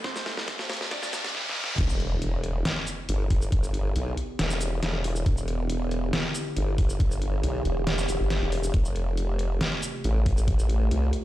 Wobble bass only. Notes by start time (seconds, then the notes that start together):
1.78 E1
3.09 G1
3.96 B1
4.39 E1
4.83 E1
5.26 E1
6.57 G1
7.44 B1
7.65 E1
8.09 E1
8.20 G1
8.42 E1
8.74 F1
10.04 A1
10.91 C2